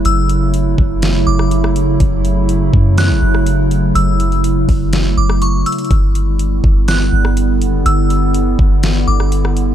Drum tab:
HH |x---x---x-------x-------x---x---|x---x---x-------x-------x---x---|x---x-x-x---o---x-------x---xxxx|x---x---x-------x-------x---x---|
SD |----------------o-----r---r-----|----------------o-----r---------|----------------o-----r---------|----------------o-----r---------|
BD |------------o-------------------|o-----------o-------------------|------------o-------------------|o-----------o-------------------|

HH |x---x---x-------x-------x---x---|
SD |----------------o-----r---r-----|
BD |------------o-------------------|